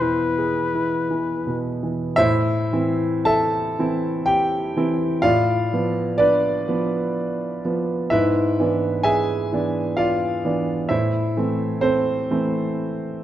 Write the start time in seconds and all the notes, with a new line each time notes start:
Already playing: E2 B2 E3
0.01 E4 B4
0.38 G#4
0.75 E4
1.10 E3
1.47 B2
1.83 E3
2.16 A2 E4 C5 E5
2.73 E3 C4 E4
3.25 A4 E5 A5
3.79 E3 C4 E4
4.26 G4 G5
4.76 E3 C4 E4
5.22 A2 F4 D5 F5
5.73 F3 B3
6.18 D4 B4 D5
6.68 F3 B3
7.65 F3 B3
8.10 G#2 E4 B4 E5
8.60 E3 B3 D4
9.03 G#4 E5 G#5
9.53 E3 B3 D4
9.97 F4 D5 F5
10.45 E3 B3 D4
10.89 A2 E4 C5 E5
11.37 E3 A3 C4
11.81 C4 A4 C5
12.31 E3 A3 C4